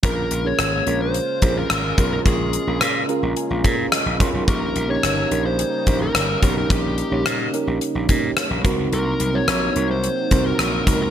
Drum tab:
HH |xxxxxxxx|xxxxxxxx|xxxxxxxx|xxxxxxxx|
SD |--r---r-|--r---r-|--r---r-|--r---r-|
BD |o----o-o|o----o-o|o----o-o|o----o-o|

HH |xxxxxxxx|
SD |--r---r-|
BD |-----o-o|